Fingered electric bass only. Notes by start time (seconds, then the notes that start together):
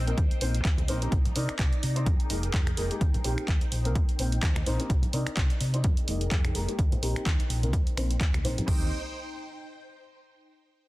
Already playing: A#1
0.41 A#1
0.65 D#2
0.89 A#1
1.12 C2
1.36 C3
1.50 muted fingered electric bass stroke
1.59 C2
1.83 C3
2.06 F2
2.30 F1
2.54 F2
2.78 F1
3.01 D#2
3.25 A#1
3.38 muted fingered electric bass stroke
3.48 D#2
3.72 A#1
3.95 D#2
4.19 A#1
4.66 A#1
4.90 C2
5.13 C3
5.27 muted fingered electric bass stroke
5.37 C2
5.61 C3
5.84 F2
5.97 muted fingered electric bass stroke
6.08 F1
6.32 F2
6.55 F1
6.79 D#2
7.02 A#1
7.16 muted fingered electric bass stroke
7.26 D#2
7.50 A#1
7.73 D#2
7.87 muted fingered electric bass stroke
7.97 A#1
8.21 D#2
8.45 A#1
8.68 D#2